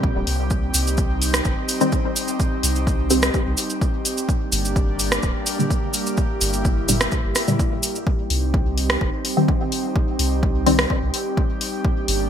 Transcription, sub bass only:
0.03 0.13 A#1 medium
0.16 0.25 D1 loud
0.27 0.70 C2 medium
0.74 1.41 C2 loud
1.45 1.55 G1 medium
2.63 3.30 C2 loud
3.46 3.55 C2 medium
4.52 5.19 G1 loud
5.23 5.33 D1 medium
6.41 7.08 G1 loud
7.24 7.33 G1 medium
8.30 8.97 C2 loud
9.01 9.11 G1 medium
10.19 10.86 C2 loud
11.02 11.11 C2 medium
12.08 12.29 G1 loud

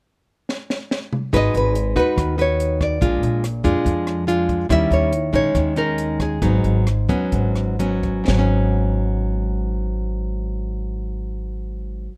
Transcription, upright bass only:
1.34 1.53 G#1 medium
1.54 1.93 G#1 medium
1.97 2.06 D#2 medium
2.18 2.98 D#2 medium
3.02 3.21 A#1 medium
3.23 3.62 A#1 medium
3.65 3.75 F2 medium
3.86 4.66 F2 medium
4.70 4.90 D#2 medium
4.91 5.30 D#2 medium
5.33 5.43 A#1 medium
5.55 6.38 D#2 medium
6.42 6.62 G#1 loud
6.64 7.06 G#1 medium
7.09 7.20 D#2 medium
7.33 8.24 G#1 medium
8.28 12.07 G#1 medium

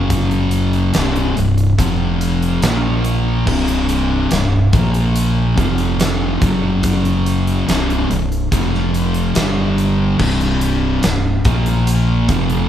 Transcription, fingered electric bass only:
0.00 0.91 F#1 loud
0.95 1.34 C1 medium
1.37 1.76 C1 medium
1.79 2.59 F1 medium
2.62 3.43 A#1 loud
3.47 4.27 C1 loud
4.31 4.70 C1 medium
4.73 5.54 A#1 loud
5.58 6.38 F1 loud
6.42 7.64 F#1 loud
7.68 8.07 C1 medium
8.10 8.49 C1 medium
8.52 9.32 F1 medium
9.36 10.16 G1 loud
10.19 10.99 C1 loud
11.04 11.43 C1 medium
11.45 12.25 A#1 medium
12.30 12.69 F1 medium

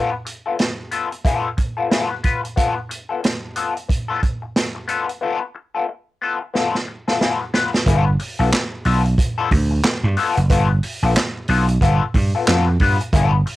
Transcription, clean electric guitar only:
0.00 0.13 B3 medium
0.00 0.12 F4 medium
0.00 0.11 A4 loud
0.13 muted clean electric guitar stroke soft
0.25 muted clean electric guitar stroke soft
0.46 0.57 B3 medium
0.46 0.57 F4 medium
0.46 0.57 A4 medium
0.59 muted clean electric guitar stroke soft
0.91 1.08 B3 medium
0.91 1.09 F4 medium
0.91 1.09 A4 medium
1.11 muted clean electric guitar stroke soft
1.25 1.47 B3 medium
1.25 1.48 F4 medium
1.25 1.48 A4 medium
1.57 muted clean electric guitar stroke soft
1.77 1.89 B3 soft
1.77 1.89 F4 medium
1.77 1.88 A4 medium
1.90 2.13 B3 medium
1.90 2.11 F4 medium
1.90 2.09 A4 medium
2.11 muted clean electric guitar stroke soft
2.23 2.40 B3 medium
2.23 2.41 F4 medium
2.23 2.41 B4 medium
2.44 muted clean electric guitar stroke soft
2.56 2.77 B3 medium
2.56 2.76 F4 medium
2.56 2.75 A4 medium
2.76 muted clean electric guitar stroke soft
2.89 muted clean electric guitar stroke soft
3.09 3.21 B3 soft
3.09 3.21 F4 soft
3.09 3.21 A4 medium
3.23 muted clean electric guitar stroke soft
3.56 3.73 B3 medium
3.56 3.73 F4 medium
3.56 3.74 A4 medium
3.76 muted clean electric guitar stroke soft
3.88 muted clean electric guitar stroke soft
4.08 4.21 B3 medium
4.08 4.22 F4 medium
4.08 4.23 A4 medium
4.22 muted clean electric guitar stroke soft
4.42 muted clean electric guitar stroke soft
4.75 muted clean electric guitar stroke soft
4.88 5.09 B3 medium
4.88 5.08 F4 medium
4.88 5.07 A4 medium
5.08 muted clean electric guitar stroke soft
5.21 5.42 B3 medium
5.21 5.42 F4 medium
5.21 5.40 A4 medium
5.42 muted clean electric guitar stroke soft
5.55 muted clean electric guitar stroke soft
5.75 5.87 B3 soft
5.75 5.86 F4 soft
5.75 5.86 A4 medium
5.88 muted clean electric guitar stroke soft
6.22 6.38 B3 medium
6.22 6.38 F4 medium
6.22 6.39 A4 medium
6.41 muted clean electric guitar stroke soft
6.54 6.75 B3 medium
6.54 6.75 F4 medium
6.54 6.75 A4 medium
6.87 muted clean electric guitar stroke soft
7.08 7.19 B3 soft
7.08 7.19 F4 medium
7.08 7.18 A4 medium
7.20 7.43 B3 medium
7.20 7.41 F4 medium
7.20 7.40 A4 medium
7.41 muted clean electric guitar stroke soft
7.54 7.70 B3 medium
7.54 7.70 F4 medium
7.54 7.71 B4 medium
7.86 8.09 B3 medium
7.86 8.06 F4 loud
7.86 8.05 A4 loud
8.06 muted clean electric guitar stroke soft
8.20 muted clean electric guitar stroke soft
8.39 8.51 B3 medium
8.39 8.50 F4 medium
8.39 8.50 A4 medium
8.52 muted clean electric guitar stroke soft
8.85 9.01 B3 medium
8.85 9.02 F4 medium
8.85 9.02 A4 medium
9.05 muted clean electric guitar stroke soft
9.18 muted clean electric guitar stroke soft
9.38 9.50 B3 medium
9.38 9.51 F4 medium
9.38 9.51 A4 loud
9.52 muted clean electric guitar stroke medium
9.71 muted clean electric guitar stroke soft
10.04 muted clean electric guitar stroke medium
10.17 10.37 B3 medium
10.17 10.38 F4 medium
10.17 10.37 A4 medium
10.38 muted clean electric guitar stroke soft
10.50 10.70 B3 loud
10.50 10.70 F4 loud
10.50 10.69 A4 loud
10.70 muted clean electric guitar stroke soft
10.83 muted clean electric guitar stroke soft
11.03 11.14 B3 medium
11.03 11.14 F4 medium
11.03 11.14 A4 medium
11.16 muted clean electric guitar stroke soft
11.49 11.65 B3 medium
11.49 11.65 F4 medium
11.49 11.66 A4 medium
11.69 muted clean electric guitar stroke soft
11.82 12.02 B3 medium
11.82 12.03 F4 medium
11.82 12.03 A4 loud
12.15 muted clean electric guitar stroke soft
12.35 12.46 B3 medium
12.35 12.46 F4 medium
12.35 12.45 A4 medium
12.48 12.68 B3 medium
12.48 12.68 F4 medium
12.48 12.67 A4 medium
12.68 muted clean electric guitar stroke medium
12.81 12.97 B3 medium
12.81 12.97 F4 medium
12.81 12.98 B4 medium
13.01 muted clean electric guitar stroke soft
13.13 13.36 B3 loud
13.13 13.34 F4 medium
13.13 13.32 A4 loud
13.34 muted clean electric guitar stroke soft
13.46 muted clean electric guitar stroke soft

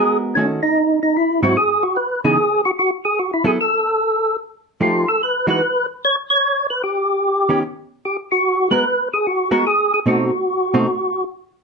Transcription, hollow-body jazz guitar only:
0.00 0.35 G#3 soft
0.00 0.35 B3 soft
0.00 0.35 F#4 soft
0.00 0.36 A#4 medium
0.37 0.59 D#3 medium
0.37 0.60 A3 soft
0.37 0.60 C#4 medium
0.37 0.60 F#4 medium
1.43 1.55 G#2 medium
1.43 1.55 F#3 medium
1.43 1.55 C4 medium
1.43 1.56 E4 medium
2.24 2.36 C#3 medium
2.24 2.36 E3 medium
2.24 2.37 B3 medium
2.24 2.37 D#4 medium
3.44 3.57 F#3 medium
3.44 3.57 B3 medium
3.44 3.57 E4 medium
3.44 3.57 A4 medium
4.81 5.04 F3 soft
4.81 5.04 A3 medium
4.81 5.04 D#4 soft
4.81 5.05 G4 medium
5.47 5.60 E3 medium
5.47 5.60 G#3 medium
5.47 5.60 D#4 medium
5.47 5.60 F#4 medium
7.49 7.62 D#3 medium
7.49 7.62 B3 medium
7.49 7.62 C#4 medium
7.49 7.62 G4 medium
8.71 8.83 G#3 medium
8.71 8.83 B3 medium
8.71 8.84 F#4 medium
8.71 8.84 A#4 medium
9.51 9.64 G#3 medium
9.51 9.64 B3 medium
9.51 9.64 F#4 medium
9.51 9.64 A#4 medium
10.06 10.29 B2 soft
10.06 10.30 A3 medium
10.06 10.30 C4 medium
10.06 10.30 D#4 medium
10.74 10.86 B2 medium
10.74 10.86 A3 medium
10.74 10.86 C4 medium
10.74 10.86 D#4 medium

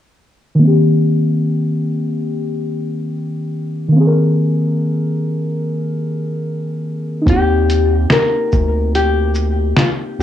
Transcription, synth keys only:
0.55 3.87 D#3 medium
0.59 3.89 A#3 medium
0.59 3.91 C4 medium
0.67 3.93 G4 medium
3.89 7.20 D#3 medium
3.89 7.22 A#3 medium
3.96 7.24 C4 medium
4.01 4.05 G#4 medium
4.07 7.30 A#4 medium
7.22 10.23 A#3 medium
7.22 10.23 D#4 medium
7.29 10.23 C4 medium
7.34 10.23 G4 medium

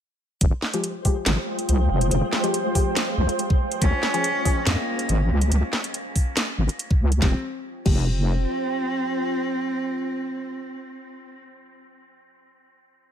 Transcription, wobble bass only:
0.41 0.51 F1 loud
1.26 1.37 G#1 medium
1.69 1.88 C2 loud
1.90 2.10 F1 medium
2.11 2.22 F1 loud
3.18 3.28 C2 loud
3.82 3.92 C#2 loud
4.66 4.77 F2 medium
5.09 5.29 G#1 loud
5.31 5.50 C#2 medium
5.52 5.62 C#2 loud
6.58 6.68 G#1 loud
7.01 7.20 C#2 medium
7.22 7.34 F1 loud
7.86 8.46 F1 loud

